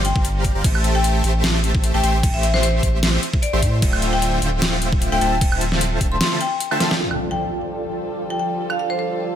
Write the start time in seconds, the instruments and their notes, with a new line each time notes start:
Already playing: sub bass G1
0.05 marimba G5, closed hi-hat
0.15 sub bass G1, supersaw synth G3 G4 C5 D5 F5 A#5, kick
0.25 closed hi-hat
0.45 kick, closed hi-hat
0.55 sub bass G1, supersaw synth G3 G4 C5 D5 F5 A#5
0.64 sub bass A1, supersaw synth A3 G4 C5 E5 A5, kick, closed hi-hat, crash
0.75 high woodblock
0.84 closed hi-hat
0.95 marimba G5
1.04 closed hi-hat
1.24 sub bass A1, supersaw synth A3 G4 C5 E5 A5, closed hi-hat
1.44 snare, closed hi-hat, crash
1.64 closed hi-hat
1.75 kick
1.84 closed hi-hat
1.94 sub bass A1, supersaw synth A3 G4 C5 E5 A5, marimba G5
2.03 sub bass A1, supersaw synth A3 G4 C5 E5 C6, marimba G5, closed hi-hat
2.23 kick, closed hi-hat, crash
2.34 sub bass A1, supersaw synth A3 G4 C5 E5 C6, marimba E5
2.43 marimba E5, closed hi-hat
2.54 marimba C5, snare
2.63 marimba C5, closed hi-hat
2.83 sub bass A1, supersaw synth A3 G4 C5 E5 C6, kick, closed hi-hat
3.03 snare, closed hi-hat, crash
3.23 closed hi-hat
3.34 kick
3.42 marimba D5, closed hi-hat
3.53 sub bass A1, supersaw synth A3 G4 C5 E5 C6
3.62 sub bass A2, supersaw synth A3 G4 C5 E5 C6, kick, closed hi-hat
3.82 sub bass D1, supersaw synth D3 A3 F4 C5 E5 G5, kick, closed hi-hat, crash
3.93 high woodblock
4.02 closed hi-hat
4.13 marimba G5
4.22 closed hi-hat
4.42 sub bass D1, supersaw synth D3 A3 F4 C5 E5 G5, closed hi-hat
4.62 snare, closed hi-hat, crash
4.82 closed hi-hat
4.93 kick
5.02 closed hi-hat
5.12 sub bass D1, supersaw synth D3 A3 F4 C5 E5 G5, marimba G5
5.21 sub bass D1, supersaw synth D3 A3 F4 C5 E5 A5, marimba G5, closed hi-hat
5.41 kick, closed hi-hat, crash
5.52 sub bass D1, supersaw synth D3 A3 F4 C5 E5 A5, high woodblock
5.61 closed hi-hat
5.72 snare
5.81 closed hi-hat
6.01 sub bass D1, supersaw synth D3 A3 F4 C5 E5 A5, kick, closed hi-hat
6.12 marimba C6
6.21 marimba C6, snare, closed hi-hat, crash
6.41 marimba G5, closed hi-hat
6.60 closed hi-hat
6.71 supersaw synth D3 A3 F4 C5 E5 A5, high woodblock
6.80 supersaw synth D3 A3 F4 C5 E5 A5, snare, closed hi-hat
6.91 snare
7.00 string section D3 G3 F4 A4, supersaw synth F3 F4 A4 D5 G5, impact
7.11 high woodblock
7.31 marimba G5
8.30 marimba G5
8.39 marimba G5
8.70 marimba F5, high woodblock
8.79 marimba F5
8.90 marimba C5
8.99 marimba C5